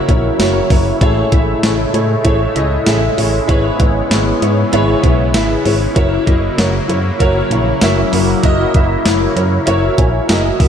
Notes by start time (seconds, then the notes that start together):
Already playing: C#3 F#3 A#3 E4 F#4 A#4 C#5 D#5 E5
0.08 A#1 E4 F#4 A#4 C#5, kick, closed hi-hat
0.39 F#1 E4 F#4 A#4 C#5, snare, closed hi-hat, tambourine
0.70 F#1 E4 F#4 A#4 C#5, kick, open hi-hat
1.01 A1 A2 G#3 A3 E4 G#4 A4 C#5, kick, closed hi-hat
1.31 A1 E4 G#4 A4 E5, kick, closed hi-hat
1.63 A1 E4 G#4 A4 C#5, snare, closed hi-hat, tambourine
1.93 A2 E4 G#4 A4 C#5, closed hi-hat
2.24 A1 E4 G#4 A4 C#5, kick, closed hi-hat
2.55 C#2 E4 G#4 A4 D#5, closed hi-hat
2.86 A1 E4 G#4 A4 E5, snare, closed hi-hat, tambourine
3.17 A1 E4 G#4 A4 C#5, open hi-hat
3.48 G#1 G#2 B3 E4 G#4 B4 C#5, kick, closed hi-hat
3.79 G#1 E4 G#4 B4 C#5, kick, closed hi-hat
4.10 G#1 E4 G#4 B4 C#5, snare, closed hi-hat, tambourine
4.41 G#2 E4 G#4 B4 C#5, closed hi-hat
4.72 G#1 E4 G#4 B4 C#5, closed hi-hat
5.03 B1 E4 G#4 B4 C#5, kick, closed hi-hat
5.33 G#1 E4 G#4 B4 E5, snare, closed hi-hat, tambourine
5.64 G#1 E4 G#4 B4 C#5, open hi-hat
5.95 F#1 C#3 F#3 A#3 E4 F#4 A#4 C#5, kick, closed hi-hat
6.26 F#1 E4 F#4 A#4 D#5, kick, closed hi-hat
6.57 F#1 E4 F#4 A#4 C#5, snare, closed hi-hat, tambourine
6.88 F#2 E4 F#4 A#4 C#5, closed hi-hat
7.19 F#1 E4 F#4 A#4 C#5, kick, closed hi-hat
7.51 A#1 E4 F#4 A#4 C#5, closed hi-hat
7.81 F#1 E4 F#4 A#4 E5, snare, closed hi-hat, tambourine
8.12 F#1 E4 F#4 A#4 C#5, open hi-hat
8.43 F#1 E4 F#4 A#4 D#5, kick, closed hi-hat
8.74 F#1 E4 F#4 A#4 E5, kick, closed hi-hat
9.04 F#1 E4 F#4 A#4 C#5, snare, closed hi-hat, tambourine
9.35 F#2 E4 F#4 A#4 C#5, closed hi-hat
9.66 F#1 E4 F#4 A#4 C#5, closed hi-hat
9.97 A#1 E4 F#4 A#4 C#5 G#5, kick, closed hi-hat
10.28 F#1 E4 F#4 A#4 D#5 F#5, snare, closed hi-hat, tambourine
10.59 F#1 E4 F#4 A#4 E5, kick, open hi-hat